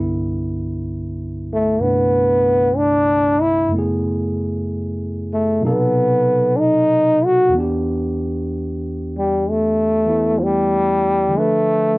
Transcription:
Already playing: tine electric piano C2 G2 D3 B3 E4
1.54 trombone A3
1.80 tine electric piano G2 C3 A3 D4, trombone B3
2.77 trombone D4
3.42 trombone E4
3.68 tine electric piano F#2 C#3
3.72 tine electric piano A3 B3
3.76 tine electric piano E4 G#4
5.34 trombone A3
5.61 tine electric piano B2 C3 F#3 D#4
5.66 trombone B3, tine electric piano A4
6.56 trombone D4 D#4
7.25 trombone F#4
7.49 tine electric piano E2 E3
7.55 tine electric piano B3 D4
7.60 tine electric piano G4
9.18 trombone G3
9.50 trombone A3
10.06 tine electric piano E3 A3 B3 E4
10.39 trombone F3
10.43 trombone G3
11.28 tine electric piano D3 F3
11.34 tine electric piano A3 D4
11.38 trombone A3, tine electric piano B4

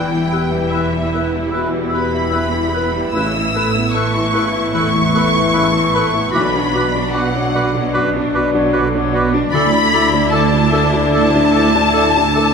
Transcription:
Already playing: double bass section E1, felt piano E2, cello section E2, harp E3 E4 E5, french horn section B3 E4, viola section E4, violin section G5
0.11 viola section G3, harp E4, felt piano E4
0.29 viola section B3, clarinet E4, felt piano G4, harp B4, oboe B4, flute section E6
0.50 viola section G3, felt piano E4, harp E5
0.71 viola section E3, clarinet E4, oboe B4, violin section E5, felt piano E5, harp G5, flute section E6
0.91 viola section G3, felt piano E4, harp B5
1.12 viola section B3, clarinet E4, felt piano B4, oboe B4, harp G5, flute section E6
1.32 viola section G3, felt piano E4, harp E5
1.51 viola section E3, harp B3, clarinet E4, oboe B4, flute section E6
1.56 felt piano B2
1.71 viola section G3, felt piano E4
1.89 viola section B3, clarinet E4, harp B4, violin section B5, flute section E6
1.94 felt piano G4, oboe B4
2.11 viola section G3, felt piano E4, harp E5
2.30 viola section E3, clarinet E4, oboe B4, felt piano E5, harp G5, flute section E6
2.52 viola section G3, felt piano E4, harp B5
2.72 viola section B3, clarinet E4, oboe B4, felt piano B4, flute section E6
2.94 viola section G3, felt piano E4, harp E5
3.12 double bass section A1, harp A2, cello section A2, viola section C#3 E4, french horn section B3 E4, clarinet E4, violin section E6, flute section E6
3.16 felt piano A1, oboe B4
3.34 viola section E3, harp E4, felt piano E4
3.53 viola section A3, clarinet E4, felt piano A4, harp B4, oboe B4, flute section E6
3.74 viola section B3, felt piano E4, harp E5
3.92 viola section A3, clarinet E4, oboe B4, felt piano E5, harp A5, violin section C#6, flute section E6
4.13 viola section E3, felt piano E4, harp B5
4.32 viola section C#3, clarinet E4, oboe B4, felt piano B4, harp A5, flute section E6
4.52 viola section E3, felt piano E4, harp E5
4.72 felt piano E2, harp E3, viola section A3, clarinet E4, oboe B4, violin section C#6, flute section E6
4.92 viola section B3, harp E4, felt piano E4
5.13 viola section A3, clarinet E4, felt piano A4, harp B4, oboe B4, flute section E6
5.34 viola section E3, felt piano E4, harp E5
5.53 viola section C#3, clarinet E4, oboe B4, felt piano E5, harp A5, flute section E6
5.74 viola section E3, felt piano E4, harp B5
5.94 viola section A3, clarinet E4, oboe B4, felt piano B4, harp A5, flute section E6
6.13 viola section B3, felt piano E4, harp E5
6.31 double bass section B1, harp B2, cello section B2, viola section D3 D4, clarinet F#4, oboe B4, violin section B5, flute section D6
6.35 felt piano B1, french horn section F#3 D4
6.53 viola section F#3, harp D4, felt piano D4
6.71 viola section B3, clarinet F#4, felt piano F#4, harp D5, flute section D6
6.76 oboe B4
6.94 viola section D4, felt piano D4, harp F#4
7.13 viola section B3, clarinet F#4, oboe B4, felt piano D5, harp F#5, violin section F#5, flute section D6
7.33 viola section F#3, felt piano D4, harp D6
7.54 viola section D3, clarinet F#4, oboe B4, felt piano D5, harp F#5, flute section D6
7.74 viola section F#3, felt piano D4, harp D5
7.93 felt piano F#2, harp F#3, viola section B3, clarinet F#4, oboe B4, flute section D6
8.14 harp D4, viola section D4, felt piano D4
8.34 viola section B3, clarinet F#4, felt piano F#4, oboe B4, harp D5, flute section D6
8.54 viola section F#3, felt piano D4, harp F#4
8.73 viola section D3, clarinet F#4, oboe B4, felt piano D5, harp F#5, flute section D6
8.94 viola section F#3, felt piano D4, harp D6
9.13 viola section B3, clarinet F#4, oboe B4, felt piano D5, harp F#5, flute section D6
9.33 viola section D4, felt piano D4, harp D5
9.50 cello section D2, felt piano D2, double bass section D2, harp D3, french horn section A3 E4, viola section D4 E4, oboe D5, violin section B5
9.54 clarinet A4, flute section E6
9.73 harp D4, felt piano D4
9.93 felt piano E4, clarinet A4, harp A4, oboe D5, flute section E6
10.12 felt piano D4, harp D5
10.31 clarinet A4, felt piano D5, oboe D5, harp E5, violin section A5, flute section E6
10.53 felt piano D4, harp A5
10.72 felt piano A4, clarinet A4, oboe D5, harp E5, flute section E6
10.93 felt piano D4, harp D5
11.11 felt piano A2, harp A3, clarinet A4, oboe D5, violin section A5, flute section E6
11.34 harp D4, felt piano D4
11.52 felt piano E4, clarinet A4, harp A4, flute section E6
11.56 oboe D5
11.74 felt piano D4, harp D5
11.93 clarinet A4, oboe D5, felt piano D5, harp E5, flute section E6
12.15 felt piano D4, harp A5
12.35 clarinet A4, felt piano A4, oboe D5, harp E5, flute section E6

